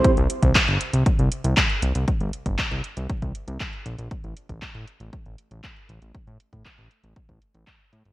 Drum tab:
HH |xxxxxxxxxxxxxxxx|xxxxxxxxxxxxxxxx|xxxxxxxxxxxxxxxx|xxxxxxxxxxxxx-xx|
CP |----x-------x---|----x-------x---|----x-------x---|----x-------x---|
BD |o--oo---o---o---|o--oo---oo--o---|o--oo---o---o---|o--oo---oo--o---|